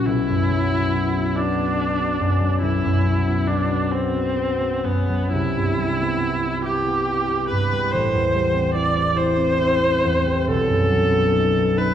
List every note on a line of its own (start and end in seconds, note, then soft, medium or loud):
0.00 0.11 A#1 soft
0.00 0.11 A#2 soft
0.00 0.50 F#3 soft
0.00 0.11 C#4 soft
0.00 0.95 F#4 soft
0.06 2.61 B1 soft
0.06 1.38 E4 medium
0.29 2.19 F#2 soft
0.51 2.39 F#3 soft
0.74 1.15 B3 soft
0.96 1.37 F#4 soft
1.16 1.57 B3 soft
1.36 2.62 D4 soft
1.36 1.76 F#4 soft
1.58 1.98 B3 soft
1.77 3.49 F#4 soft
1.99 3.26 B3 soft
2.20 2.83 F#2 soft
2.40 3.04 F#3 soft
2.62 5.36 B1 soft
2.62 3.48 E4 soft
2.84 4.83 F#2 soft
3.05 5.08 F#3 soft
3.27 3.69 B3 soft
3.47 3.92 D4 soft
3.47 3.91 F#4 soft
3.70 4.13 B3 soft
3.91 4.86 C4 soft
3.91 4.36 F#4 soft
4.14 4.59 B3 soft
4.37 5.36 F#4 soft
4.60 6.00 B3 soft
4.84 5.36 F#2 soft
4.84 5.32 B3 soft
5.09 5.36 F#3 soft
5.33 7.96 C2 soft
5.33 6.62 E4 medium
5.56 7.51 G2 soft
5.79 7.71 G3 soft
6.01 6.43 B3 soft
6.22 6.64 E4 soft
6.44 6.85 B3 soft
6.65 7.08 E4 soft
6.65 7.48 G4 medium
6.86 7.28 B3 soft
7.10 8.74 E4 soft
7.29 7.95 B3 soft
7.49 7.96 G2 soft
7.49 7.93 B4 medium
7.72 8.33 G3 soft
7.91 10.55 A1 soft
7.91 8.74 C5 soft
8.14 10.03 E2 soft
8.34 10.25 G3 soft
8.53 8.94 C4 soft
8.74 9.15 E4 soft
8.74 9.18 D5 medium
8.95 9.36 C4 soft
9.16 9.59 E4 soft
9.16 10.50 C5 medium
9.37 9.81 C4 soft
9.60 10.53 E4 soft
9.82 10.53 C4 soft
10.05 10.53 E2 soft
10.26 10.53 G3 soft
10.48 11.94 B1 soft
10.48 11.79 A4 medium
10.68 11.94 F#2 soft
10.89 11.94 F#3 soft
11.12 11.55 B3 soft
11.32 11.75 D#4 soft
11.56 11.94 B3 soft
11.77 11.94 D#4 soft
11.77 11.94 B4 medium